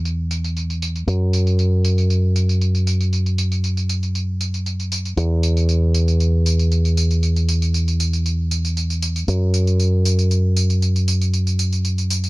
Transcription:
Already playing: fingered electric bass E2
0.05 tambourine
0.31 tambourine
0.44 tambourine
0.57 tambourine
0.70 tambourine
0.82 tambourine
0.96 tambourine
1.07 fingered electric bass F#2, tambourine
1.33 tambourine
1.47 tambourine
1.59 tambourine
1.85 tambourine
1.98 tambourine
2.10 tambourine
2.36 tambourine
2.49 tambourine
2.61 tambourine
2.75 tambourine
2.87 tambourine
3.01 tambourine
3.13 tambourine
3.26 tambourine
3.38 tambourine
3.52 tambourine
3.64 tambourine
3.77 tambourine
3.89 tambourine
4.03 tambourine
4.15 tambourine
4.41 tambourine
4.54 tambourine
4.66 tambourine
4.80 tambourine
4.92 tambourine
5.05 tambourine
5.17 fingered electric bass E2, tambourine
5.43 tambourine
5.57 tambourine
5.69 tambourine
5.94 tambourine
6.08 tambourine
6.20 tambourine
6.46 tambourine
6.59 tambourine
6.72 tambourine
6.85 tambourine
6.97 tambourine
7.11 tambourine
7.23 tambourine
7.36 tambourine
7.49 tambourine
7.62 tambourine
7.74 tambourine
7.88 tambourine
8.00 tambourine
8.13 tambourine
8.26 tambourine
8.51 tambourine
8.65 tambourine
8.77 tambourine
8.90 tambourine
9.02 tambourine
9.16 tambourine
9.28 fingered electric bass F#2, tambourine
9.54 tambourine
9.67 tambourine
9.80 tambourine
10.05 tambourine
10.19 tambourine
10.31 tambourine
10.57 tambourine
10.70 tambourine
10.82 tambourine
10.96 tambourine
11.08 tambourine
11.21 tambourine
11.34 tambourine
11.47 tambourine
11.59 tambourine
11.73 tambourine
11.85 tambourine
11.98 tambourine
12.10 tambourine
12.24 tambourine

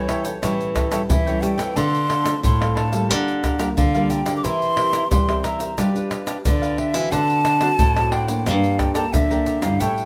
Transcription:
Already playing: nylon-string guitar E3 G3 C#4 E4, flute C#5
0.08 cavaquinho E4 A4 C#5 G5, pandeiro, tamborim, shaker
0.25 cavaquinho A4 C#5 G5, pandeiro, shaker
0.42 nylon-string guitar A2 E3 G3 C#4 E4, cavaquinho E4 A4 C#5 G5, pandeiro, tamborim, shaker, surdo
0.61 pandeiro, shaker
0.74 cavaquinho E4 A4 C#5 G5, pandeiro, tamborim, shaker, surdo
0.91 nylon-string guitar G3 C#4 E4, cavaquinho E4 A4 C#5 G5, pandeiro, tamborim, shaker
1.10 nylon-string guitar E3, flute E5, pandeiro, shaker, surdo
1.26 nylon-string guitar G3 C#4 E4, cavaquinho A4 C#5 G5, pandeiro, shaker
1.41 nylon-string guitar G3, cavaquinho E4 A4 C#5 G5, flute G5, pandeiro, shaker
1.57 nylon-string guitar E3 A3 C4 F4, cavaquinho A4 C#5 G5, pandeiro, tamborim, shaker
1.76 nylon-string guitar D3, cavaquinho D4 A4 C5 F5, flute C6, pandeiro, shaker, surdo
1.95 pandeiro, shaker
2.08 cavaquinho D4 A4 C5 F5, pandeiro, tamborim
2.24 nylon-string guitar A3 C4 F4, cavaquinho D4 A4 C5 F5, pandeiro, tamborim, shaker
2.44 nylon-string guitar A2, flute C6, pandeiro, shaker, surdo
2.60 nylon-string guitar A3 C4 F4, cavaquinho A4 C5 F5, pandeiro, tamborim, shaker
2.75 cavaquinho D4 A4 C5 F5, flute A5, pandeiro, tamborim
2.92 nylon-string guitar G3 A#3 F4, cavaquinho A4 C5 F5, pandeiro, shaker
3.09 nylon-string guitar D3, cavaquinho G4 A#4 D5 F5, pandeiro, tamborim, shaker, surdo
3.28 pandeiro, shaker
3.43 cavaquinho G4 A#4 D5 F5, pandeiro, tamborim, shaker, surdo
3.59 nylon-string guitar G3 A#3 F4, cavaquinho G4 A#4 D5 F5, pandeiro, tamborim, shaker
3.76 nylon-string guitar D3, flute F5, pandeiro, shaker, surdo
3.94 nylon-string guitar G3 A#3 F4, cavaquinho A#4 D5 F5, pandeiro, shaker
4.10 cavaquinho G4 A#4 D5 F5, flute G5, pandeiro, shaker
4.26 nylon-string guitar D3 C4 G4 A#4, cavaquinho A#4 D5 F5, pandeiro, tamborim, shaker
4.37 flute D6
4.44 nylon-string guitar E3, cavaquinho E4 A#4 C5 E5, flute C6, pandeiro, shaker, surdo
4.62 pandeiro, shaker
4.76 nylon-string guitar C4 G4 A#4, cavaquinho E4 A#4 C5 E5, pandeiro, tamborim
4.93 cavaquinho E4 A#4 C5 E5, pandeiro, tamborim, shaker
5.11 nylon-string guitar E3 G3, flute C6, pandeiro, shaker, surdo
5.28 nylon-string guitar C4 G4 A#4, cavaquinho A#4 C5 E5, pandeiro, tamborim, shaker
5.43 cavaquinho E4 A#4 C5 E5, flute A#5, pandeiro, tamborim, shaker
5.59 cavaquinho A#4 C5 E5, pandeiro, shaker
5.78 nylon-string guitar G3 D4 F4 B4, cavaquinho D4 G4 B4 F5, pandeiro, tamborim, shaker, surdo
5.95 nylon-string guitar D4 F4 B4, pandeiro, shaker
6.10 cavaquinho D4 G4 B4 F5, pandeiro, tamborim, shaker
6.27 cavaquinho D4 G4 B4 F5, pandeiro, tamborim, shaker
6.45 nylon-string guitar D3 D4 F4 B4, flute D5, pandeiro, shaker, surdo
6.62 cavaquinho G4 B4 F5, pandeiro, shaker
6.77 cavaquinho D4 G4 B4 F5, flute E5, pandeiro
6.93 nylon-string guitar E3 C4 F#4 A4, cavaquinho G4 B4 F5, pandeiro, tamborim, shaker
7.12 nylon-string guitar D3, cavaquinho D4 C5 D5 F#5, flute A5, pandeiro, shaker, surdo
7.30 pandeiro, shaker
7.44 cavaquinho D4 C5 D5 F#5, pandeiro, tamborim, shaker
7.60 nylon-string guitar C4 F#4 A4, cavaquinho D4 C5 D5 F#5, pandeiro, tamborim, shaker
7.79 nylon-string guitar A2, pandeiro, shaker, surdo
7.96 nylon-string guitar C4 F#4 A4, cavaquinho C5 D5 F#5, pandeiro, tamborim, shaker
8.11 cavaquinho D4 C5 D5 F#5, flute G5, pandeiro, tamborim
8.27 nylon-string guitar A#3 D4, cavaquinho C5 D5 F#5, pandeiro, shaker
8.39 flute G5
8.46 nylon-string guitar G2 G3, cavaquinho D5 G5 A#5, flute F5, pandeiro, tamborim, shaker, surdo
8.64 pandeiro, shaker
8.78 cavaquinho A4 D5 G5 A#5, flute G5, pandeiro, tamborim, shaker, surdo
8.94 nylon-string guitar A#3 D4 A4, cavaquinho A4 D5 G5 A#5, flute A5, pandeiro, tamborim, shaker
9.13 nylon-string guitar D3, flute E5, pandeiro, shaker, surdo
9.30 nylon-string guitar A#3 D4 A4, cavaquinho D5 G5 A#5, pandeiro, shaker
9.46 cavaquinho A4 D5 G5 A#5, pandeiro, shaker
9.61 nylon-string guitar G2 G3 C#4 E4, cavaquinho D5 G5 A#5, flute F5, pandeiro, tamborim, shaker
9.80 nylon-string guitar A2, cavaquinho E4 A4 C#5 G5, flute G5, pandeiro, shaker, surdo
9.98 pandeiro, shaker

